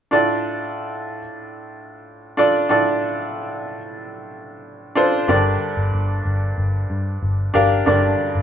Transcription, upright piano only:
0.11 1.05 A2 soft
0.11 1.18 D4 medium
0.11 1.19 F4 medium
0.11 1.19 A4 medium
0.11 1.19 D5 medium
2.37 2.64 D4 medium
2.37 2.65 F4 medium
2.37 2.65 A4 medium
2.37 2.65 D5 medium
2.69 3.63 A2 medium
2.69 3.76 D4 medium
2.69 3.77 F4 medium
2.69 3.77 A4 medium
2.69 3.77 D5 medium
4.95 5.23 D4 medium
4.95 5.23 F4 medium
4.95 5.23 A4 medium
4.95 5.24 C5 medium
5.28 6.22 G2 medium
5.28 6.22 D3 medium
5.28 6.35 D4 medium
5.28 6.35 G4 medium
5.28 6.36 A#4 medium
5.28 6.36 D5 medium
7.54 7.81 D4 medium
7.54 7.81 G4 medium
7.54 7.81 A#4 medium
7.54 7.82 F5 medium
7.86 8.42 G2 medium
7.86 8.42 D3 medium
7.86 8.42 D4 medium
7.86 8.42 G4 medium
7.86 8.42 A#4 medium
7.86 8.42 D5 medium

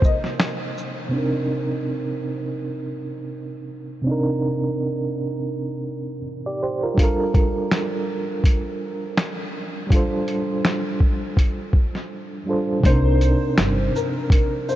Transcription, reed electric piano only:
0.00 1.07 C3 medium
0.00 1.09 A#3 medium
0.00 1.08 C4 medium
0.00 1.10 D#4 medium
0.00 1.14 A4 medium
0.00 1.15 A#4 medium
1.09 3.99 C3 medium
1.09 4.01 C4 medium
1.13 4.02 D4 medium
1.13 4.03 D#4 medium
1.18 4.04 A#4 medium
4.02 6.19 C3 medium
4.02 6.20 C4 medium
4.07 6.21 D4 medium
4.07 6.23 D#4 medium
4.11 6.24 A#4 medium
6.46 6.61 G4 soft
6.46 6.61 D5 medium
6.63 6.82 G4 medium
6.63 6.82 C5 medium
6.83 6.98 F4 soft
6.83 7.02 A#4 medium
6.94 9.85 G3 medium
6.94 9.86 D4 medium
6.99 9.87 F4 medium
6.99 9.88 A4 medium
7.04 9.89 A#4 medium
9.87 12.41 G3 medium
9.87 12.42 D4 medium
9.91 12.43 F4 medium
9.91 12.44 A4 medium
9.96 12.45 C5 medium
12.46 12.83 G3 medium
12.46 12.83 D4 soft
12.46 12.84 F4 soft
12.46 12.85 A4 medium
12.50 12.85 C5 medium
12.80 14.76 C3 medium
12.80 14.76 C4 medium
12.85 14.76 D4 medium
12.85 14.76 D#4 medium
12.89 14.76 A#4 medium

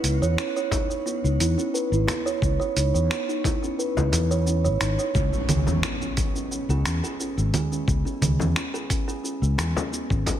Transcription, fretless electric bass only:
0.03 0.19 C#2 medium
0.22 0.35 E2 loud
1.24 1.37 C#2 medium
1.40 1.55 E2 loud
1.92 2.05 G#1 loud
2.42 2.57 C#2 medium
2.76 2.91 C#2 medium
2.94 3.08 E2 medium
3.97 4.10 C#2 medium
4.13 4.66 E2 loud
4.65 4.78 G#1 medium
4.81 4.96 G#1 medium
5.15 5.30 C#2 loud
5.49 5.64 C#2 medium
5.67 5.81 E2 loud
6.69 6.83 C#2 medium
6.85 7.00 E2 medium
7.37 7.51 G#1 loud
7.88 8.03 C#2 loud
8.21 8.37 C#2 medium
8.39 8.53 E2 medium
9.42 9.55 C#2 medium
9.58 9.73 E2 loud
10.10 10.24 G#1 loud

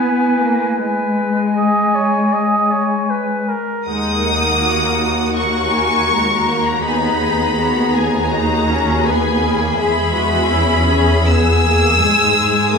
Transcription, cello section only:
0.00 0.41 B3 medium
0.41 0.80 A#3 medium
0.79 3.49 G#3 soft
3.86 6.79 D#2 soft
6.83 9.74 D#2 soft
9.79 12.01 E2 soft
12.01 12.74 G#2 soft
12.74 12.78 F#2 soft

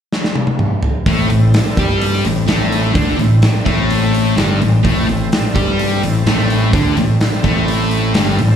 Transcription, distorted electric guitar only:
1.07 1.28 A2 medium
1.07 1.30 A3 loud
1.29 1.49 A2 medium
1.78 2.24 G3 medium
1.78 2.25 G4 medium
2.24 2.43 A2 medium
2.47 2.94 A2 medium
2.47 2.94 A3 loud
2.95 3.18 D3 medium
2.95 3.18 D4 loud
3.18 3.38 A2 medium
3.65 4.36 A2 medium
3.65 4.36 A3 loud
4.36 4.59 G2 medium
4.36 4.60 G3 medium
4.59 4.79 A2 medium
4.83 5.06 A2 loud
4.83 5.07 A3 loud
5.07 5.27 A2 medium
5.54 6.01 G3 medium
5.54 6.02 G4 medium
6.03 6.22 A2 medium
6.26 6.72 A2 medium
6.26 6.73 A3 loud
6.73 6.96 D3 loud
6.73 6.96 D4 loud
6.97 7.16 A2 medium
7.43 8.14 A2 medium
7.43 8.14 A3 loud
8.14 8.37 G2 medium
8.14 8.38 G3 medium
8.38 8.56 A2 medium

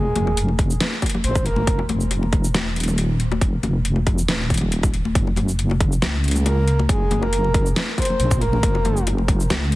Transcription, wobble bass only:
0.00 0.79 F1 loud
1.24 1.66 G#1 loud
1.67 2.53 F1 loud
2.54 3.40 D#1 loud
3.41 4.27 F1 medium
4.28 5.14 D#1 loud
5.15 6.01 F#1 medium
6.02 6.88 C#2 loud
6.89 7.75 F#1 loud
8.19 8.61 A#1 loud
8.63 9.48 F#1 loud
9.50 9.76 C#2 loud

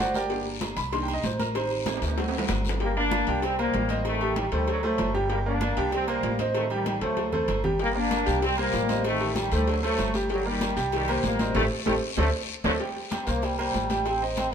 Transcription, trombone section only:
2.82 2.96 G3 medium
2.82 2.96 A#3 loud
2.97 3.40 A#3 medium
2.97 3.40 D4 loud
3.44 3.59 G3 medium
3.44 3.59 C4 loud
3.59 4.03 G3 medium
3.59 4.02 A#3 loud
4.06 4.35 D#3 medium
4.06 4.34 A3 loud
4.38 4.45 D#3 medium
4.38 4.44 G3 medium
4.53 4.67 D#3 medium
4.53 4.67 G3 medium
4.69 4.83 D3 medium
4.69 4.83 F#3 loud
4.85 5.15 F#3 medium
4.85 5.15 A3 medium
5.31 5.38 G3 medium
5.31 5.38 A#3 medium
5.46 5.90 A#3 medium
5.46 5.90 D4 loud
5.94 6.08 G3 medium
5.94 6.08 C4 loud
6.09 6.40 G3 medium
6.09 6.40 A#3 medium
6.56 6.63 D#3 medium
6.56 6.63 A3 medium
6.72 7.00 D#3 medium
6.72 7.00 G3 medium
7.04 7.36 F#3 medium
7.04 7.36 A3 medium
7.81 7.95 G3 medium
7.81 7.95 A#3 loud
7.96 8.43 A#3 medium
7.96 8.43 D4 loud
8.43 8.58 G3 medium
8.43 8.57 C4 loud
8.59 9.03 G3 medium
8.59 9.02 A#3 loud
9.06 9.35 D#3 medium
9.06 9.34 A3 loud
9.37 9.52 D#3 medium
9.37 9.52 G3 medium
9.53 9.67 D#3 medium
9.53 9.67 G3 loud
9.68 9.83 D3 medium
9.68 9.82 F#3 loud
9.84 10.13 F#3 medium
9.84 10.13 A3 medium
10.31 10.46 D3 medium
10.31 10.45 F#3 medium
10.47 10.76 D#3 medium
10.47 10.76 G3 loud
10.95 11.23 D#3 medium
10.95 11.23 G3 loud
11.26 11.54 G3 medium
11.26 11.54 A#3 loud
11.56 11.63 D#3 loud
11.56 11.63 G3 medium
11.56 11.63 A3 loud
11.87 11.95 D#3 loud
11.87 11.95 G3 loud
11.87 11.95 A3 medium
12.18 12.26 D3 loud
12.18 12.26 F#3 medium
12.18 12.26 A3 loud
12.64 12.72 D3 loud
12.64 12.72 F#3 loud
12.64 12.72 A3 loud

